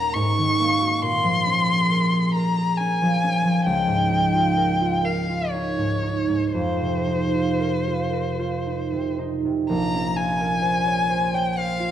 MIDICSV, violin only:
0, 0, Header, 1, 2, 480
1, 0, Start_track
1, 0, Tempo, 875912
1, 563, Time_signature, 3, 2, 24, 8
1, 2004, Tempo, 934579
1, 2964, Tempo, 1015228
1, 3444, Tempo, 1052632
1, 4884, Tempo, 933126
1, 6023, End_track
2, 0, Start_track
2, 0, Title_t, "Violin"
2, 0, Program_c, 0, 40
2, 0, Note_on_c, 0, 82, 78
2, 75, Note_on_c, 0, 85, 82
2, 83, Note_off_c, 0, 82, 0
2, 559, Note_on_c, 0, 84, 83
2, 567, Note_off_c, 0, 85, 0
2, 1284, Note_off_c, 0, 84, 0
2, 1286, Note_on_c, 0, 82, 72
2, 1521, Note_on_c, 0, 80, 72
2, 1529, Note_off_c, 0, 82, 0
2, 2001, Note_off_c, 0, 80, 0
2, 2004, Note_on_c, 0, 79, 78
2, 2719, Note_on_c, 0, 77, 57
2, 2727, Note_off_c, 0, 79, 0
2, 2955, Note_on_c, 0, 73, 61
2, 2962, Note_off_c, 0, 77, 0
2, 3433, Note_off_c, 0, 73, 0
2, 3436, Note_on_c, 0, 72, 65
2, 4632, Note_off_c, 0, 72, 0
2, 4886, Note_on_c, 0, 82, 76
2, 5126, Note_on_c, 0, 80, 84
2, 5134, Note_off_c, 0, 82, 0
2, 5730, Note_on_c, 0, 79, 68
2, 5738, Note_off_c, 0, 80, 0
2, 5853, Note_on_c, 0, 77, 78
2, 5860, Note_off_c, 0, 79, 0
2, 6023, Note_off_c, 0, 77, 0
2, 6023, End_track
0, 0, End_of_file